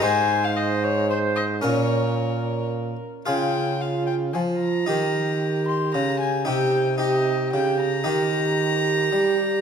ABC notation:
X:1
M:3/4
L:1/16
Q:1/4=113
K:Dblyd
V:1 name="Violin"
a3 f e2 d2 c2 e2 | d8 z4 | g4 f2 g2 a2 b2- | b6 c'2 b2 a2 |
g4 e4 g2 b2- | b12 |]
V:2 name="Viola"
c4 c4 c4 | B8- B2 z2 | F4 F4 F4 | G12 |
G4 G4 G4 | G12 |]
V:3 name="Harpsichord"
[A,Ec]12 | [DB]12 | [FA]12 | [EG]12 |
[EG]4 [EG]8 | [EG]12 |]
V:4 name="Harpsichord" clef=bass
A,,12 | B,,8- B,,2 z2 | D,8 F,4 | E,8 D,4 |
C,8 D,4 | E,8 G,4 |]
V:5 name="Trombone" clef=bass
A,,12 | B,,8- B,,2 z2 | D,8 F,4 | E,8 D,4 |
C,8 D,4 | E,8 G,4 |]